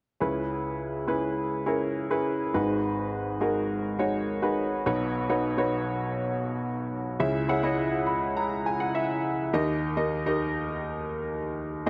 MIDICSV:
0, 0, Header, 1, 2, 480
1, 0, Start_track
1, 0, Tempo, 583090
1, 168, Time_signature, 4, 2, 24, 8
1, 9794, End_track
2, 0, Start_track
2, 0, Title_t, "Upright piano"
2, 0, Program_c, 0, 0
2, 168, Note_on_c, 0, 61, 62
2, 172, Note_on_c, 0, 68, 54
2, 173, Note_on_c, 0, 49, 50
2, 173, Note_on_c, 0, 64, 54
2, 174, Note_on_c, 0, 37, 51
2, 176, Note_on_c, 0, 71, 64
2, 336, Control_c, 0, 64, 127
2, 842, Note_off_c, 0, 61, 0
2, 844, Note_off_c, 0, 68, 0
2, 845, Note_off_c, 0, 64, 0
2, 846, Note_off_c, 0, 71, 0
2, 884, Note_on_c, 0, 64, 54
2, 887, Note_on_c, 0, 61, 58
2, 887, Note_on_c, 0, 68, 55
2, 891, Note_on_c, 0, 71, 70
2, 1336, Note_off_c, 0, 64, 0
2, 1337, Note_off_c, 0, 61, 0
2, 1337, Note_off_c, 0, 68, 0
2, 1339, Note_off_c, 0, 71, 0
2, 1369, Note_on_c, 0, 61, 63
2, 1369, Note_on_c, 0, 64, 60
2, 1371, Note_on_c, 0, 68, 59
2, 1371, Note_on_c, 0, 70, 68
2, 1706, Note_off_c, 0, 61, 0
2, 1706, Note_off_c, 0, 64, 0
2, 1707, Note_off_c, 0, 68, 0
2, 1707, Note_off_c, 0, 70, 0
2, 1733, Note_on_c, 0, 64, 60
2, 1735, Note_on_c, 0, 61, 63
2, 1736, Note_on_c, 0, 68, 60
2, 1737, Note_on_c, 0, 71, 72
2, 2060, Note_off_c, 0, 37, 0
2, 2060, Note_off_c, 0, 49, 0
2, 2069, Note_off_c, 0, 61, 0
2, 2069, Note_off_c, 0, 64, 0
2, 2070, Note_off_c, 0, 68, 0
2, 2070, Note_off_c, 0, 71, 0
2, 2090, Note_on_c, 0, 63, 65
2, 2091, Note_on_c, 0, 66, 56
2, 2094, Note_on_c, 0, 32, 56
2, 2094, Note_on_c, 0, 71, 74
2, 2095, Note_on_c, 0, 44, 56
2, 2095, Note_on_c, 0, 68, 63
2, 2100, Control_c, 0, 64, 0
2, 2270, Control_c, 0, 64, 127
2, 2764, Note_off_c, 0, 63, 0
2, 2765, Note_off_c, 0, 66, 0
2, 2766, Note_off_c, 0, 68, 0
2, 2766, Note_off_c, 0, 71, 0
2, 2805, Note_on_c, 0, 63, 64
2, 2806, Note_on_c, 0, 68, 58
2, 2809, Note_on_c, 0, 66, 57
2, 2810, Note_on_c, 0, 70, 70
2, 3257, Note_off_c, 0, 63, 0
2, 3258, Note_off_c, 0, 68, 0
2, 3259, Note_off_c, 0, 66, 0
2, 3260, Note_off_c, 0, 70, 0
2, 3283, Note_on_c, 0, 63, 62
2, 3283, Note_on_c, 0, 66, 58
2, 3288, Note_on_c, 0, 68, 59
2, 3289, Note_on_c, 0, 73, 71
2, 3624, Note_off_c, 0, 63, 0
2, 3624, Note_off_c, 0, 66, 0
2, 3627, Note_off_c, 0, 68, 0
2, 3627, Note_off_c, 0, 73, 0
2, 3639, Note_on_c, 0, 66, 59
2, 3641, Note_on_c, 0, 63, 61
2, 3644, Note_on_c, 0, 68, 58
2, 3645, Note_on_c, 0, 71, 67
2, 3981, Note_off_c, 0, 32, 0
2, 3981, Note_off_c, 0, 44, 0
2, 3982, Note_off_c, 0, 66, 0
2, 3983, Note_off_c, 0, 63, 0
2, 3985, Note_off_c, 0, 68, 0
2, 3985, Note_off_c, 0, 71, 0
2, 4001, Note_on_c, 0, 35, 66
2, 4002, Note_on_c, 0, 63, 74
2, 4002, Note_on_c, 0, 66, 69
2, 4002, Note_on_c, 0, 71, 74
2, 4005, Note_on_c, 0, 47, 67
2, 4005, Note_on_c, 0, 73, 83
2, 4023, Control_c, 0, 64, 0
2, 4163, Control_c, 0, 64, 127
2, 4344, Note_off_c, 0, 63, 0
2, 4344, Note_off_c, 0, 66, 0
2, 4344, Note_off_c, 0, 71, 0
2, 4345, Note_off_c, 0, 73, 0
2, 4359, Note_on_c, 0, 63, 72
2, 4360, Note_on_c, 0, 66, 62
2, 4360, Note_on_c, 0, 71, 63
2, 4362, Note_on_c, 0, 73, 78
2, 4577, Note_off_c, 0, 63, 0
2, 4580, Note_off_c, 0, 66, 0
2, 4583, Note_off_c, 0, 73, 0
2, 4584, Note_off_c, 0, 71, 0
2, 4590, Note_on_c, 0, 63, 74
2, 4592, Note_on_c, 0, 66, 67
2, 4595, Note_on_c, 0, 73, 83
2, 4597, Note_on_c, 0, 71, 66
2, 5499, Note_off_c, 0, 63, 0
2, 5500, Note_off_c, 0, 66, 0
2, 5501, Note_off_c, 0, 73, 0
2, 5502, Note_off_c, 0, 71, 0
2, 5894, Note_off_c, 0, 35, 0
2, 5896, Note_off_c, 0, 47, 0
2, 5924, Note_on_c, 0, 64, 77
2, 5925, Note_on_c, 0, 49, 69
2, 5925, Note_on_c, 0, 73, 68
2, 5927, Note_on_c, 0, 68, 74
2, 5928, Note_on_c, 0, 37, 68
2, 5928, Note_on_c, 0, 76, 85
2, 5941, Control_c, 0, 64, 0
2, 6078, Control_c, 0, 64, 127
2, 6151, Note_off_c, 0, 64, 0
2, 6152, Note_off_c, 0, 68, 0
2, 6153, Note_off_c, 0, 73, 0
2, 6154, Note_off_c, 0, 76, 0
2, 6164, Note_on_c, 0, 64, 74
2, 6164, Note_on_c, 0, 68, 75
2, 6167, Note_on_c, 0, 73, 74
2, 6168, Note_on_c, 0, 78, 87
2, 6272, Note_off_c, 0, 64, 0
2, 6274, Note_off_c, 0, 68, 0
2, 6274, Note_off_c, 0, 73, 0
2, 6283, Note_off_c, 0, 78, 0
2, 6284, Note_on_c, 0, 64, 72
2, 6286, Note_on_c, 0, 73, 67
2, 6287, Note_on_c, 0, 68, 66
2, 6288, Note_on_c, 0, 75, 82
2, 6641, Note_on_c, 0, 83, 62
2, 6869, Note_off_c, 0, 83, 0
2, 6887, Note_on_c, 0, 82, 70
2, 7112, Note_off_c, 0, 82, 0
2, 7130, Note_on_c, 0, 80, 66
2, 7185, Note_off_c, 0, 64, 0
2, 7187, Note_off_c, 0, 68, 0
2, 7187, Note_off_c, 0, 73, 0
2, 7187, Note_off_c, 0, 75, 0
2, 7242, Note_off_c, 0, 80, 0
2, 7245, Note_on_c, 0, 78, 69
2, 7360, Note_off_c, 0, 78, 0
2, 7366, Note_on_c, 0, 76, 71
2, 7815, Note_off_c, 0, 49, 0
2, 7816, Note_off_c, 0, 76, 0
2, 7817, Note_off_c, 0, 37, 0
2, 7848, Note_on_c, 0, 70, 77
2, 7849, Note_on_c, 0, 51, 67
2, 7850, Note_on_c, 0, 67, 77
2, 7851, Note_on_c, 0, 39, 68
2, 7851, Note_on_c, 0, 63, 77
2, 7854, Note_on_c, 0, 75, 89
2, 7862, Control_c, 0, 64, 0
2, 7987, Control_c, 0, 64, 127
2, 8186, Note_off_c, 0, 70, 0
2, 8187, Note_off_c, 0, 67, 0
2, 8188, Note_off_c, 0, 63, 0
2, 8189, Note_off_c, 0, 75, 0
2, 8205, Note_on_c, 0, 63, 78
2, 8208, Note_on_c, 0, 67, 66
2, 8209, Note_on_c, 0, 70, 67
2, 8209, Note_on_c, 0, 75, 85
2, 8433, Note_off_c, 0, 63, 0
2, 8434, Note_off_c, 0, 67, 0
2, 8434, Note_off_c, 0, 75, 0
2, 8435, Note_off_c, 0, 70, 0
2, 8447, Note_on_c, 0, 70, 75
2, 8448, Note_on_c, 0, 67, 71
2, 8449, Note_on_c, 0, 63, 79
2, 8451, Note_on_c, 0, 75, 84
2, 9346, Note_off_c, 0, 67, 0
2, 9346, Note_off_c, 0, 70, 0
2, 9347, Note_off_c, 0, 63, 0
2, 9348, Note_off_c, 0, 75, 0
2, 9736, Note_off_c, 0, 51, 0
2, 9737, Note_off_c, 0, 39, 0
2, 9766, Note_on_c, 0, 68, 77
2, 9768, Note_on_c, 0, 63, 81
2, 9769, Note_on_c, 0, 32, 70
2, 9769, Note_on_c, 0, 70, 74
2, 9779, Control_c, 0, 64, 0
2, 9794, Note_off_c, 0, 32, 0
2, 9794, Note_off_c, 0, 63, 0
2, 9794, Note_off_c, 0, 68, 0
2, 9794, Note_off_c, 0, 70, 0
2, 9794, End_track
0, 0, End_of_file